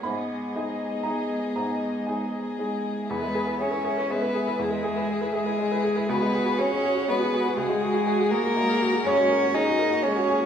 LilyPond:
<<
  \new Staff \with { instrumentName = "Violin" } { \time 3/4 \key e \lydian \tempo 4 = 121 gis'2.~ | gis'4. gis'4. | b'4 cis''4 b'4 | gis'4. gis'4. |
b'4 cis''4 b'4 | gis'4. ais'4. | cis''4 dis''4 cis''4 | }
  \new Staff \with { instrumentName = "String section" } { \time 3/4 \key e \lydian << { dis''2.~ | dis''2. | e''2.~ | e''2. |
fis''2.~ | fis''2.~ | fis''2. | } \\ { <gis gis'>2.~ | <gis gis'>2. | <gis gis'>2.~ | <gis gis'>2.~ |
<gis gis'>2.~ | <gis gis'>2. | <ais gis'>2. | } >> }
  \new Staff \with { instrumentName = "Viola" } { \time 3/4 \key e \lydian b2.~ | b2~ b8 r8 | gis'16 b'16 gis'16 b'16 gis'16 b'16 gis'16 b'16 gis'16 b'16 gis'16 b'16 | gis'16 b'16 gis'16 b'16 gis'16 b'16 gis'16 b'16 gis'16 b'16 gis'16 b'16 |
fis'16 gis'16 fis'16 gis'16 fis'16 gis'16 fis'16 gis'16 fis'16 gis'16 fis'16 gis'16 | fis'16 gis'16 fis'16 gis'16 fis'16 gis'16 fis'16 gis'16 fis'16 gis'16 fis'16 gis'16 | gis'16 fis'16 gis'16 fis'16 gis'16 fis'16 gis'16 fis'16 gis'16 fis'16 gis'16 fis'16 | }
  \new Staff \with { instrumentName = "Upright piano" } { \time 3/4 \key e \lydian << { b''2 ais''4 | ais''4 gis''4. r8 | r2. | r2. |
r2. | r2. | r2. | } \\ { gis,4 <gis dis' gis'>4 <gis dis' gis'>4 | gis,4 <gis dis' gis'>4 <gis dis' gis'>4 | e,16 gis16 gis'16 e'16 gis'16 e'16 gis'16 e'16 gis16 e'16 gis'16 e'16 | e,16 gis16 gis'16 e'16 gis'16 e'16 gis'16 e'16 gis16 e'16 gis'16 e'16 |
cis,16 gis16 gis'16 fis'16 gis'16 fis'16 gis'16 fis'16 gis16 fis'16 gis'16 fis'16 | cis,16 gis16 gis'16 fis'16 gis'16 fis'16 gis'16 fis'16 gis16 fis'16 gis'16 fis'16 | fis,16 gis16 ais'16 fis'16 gis'16 fis'16 ais'16 fis'16 gis16 fis'16 gis'16 fis'16 | } >> }
  \new Staff \with { instrumentName = "Cello" } { \time 3/4 \key e \lydian b4 dis'2 | dis'4. gis4. | b4 cis'4 b4 | gis4. gis4. |
b4 cis'4 b4 | gis4. ais4. | cis'4 dis'4 cis'4 | }
>>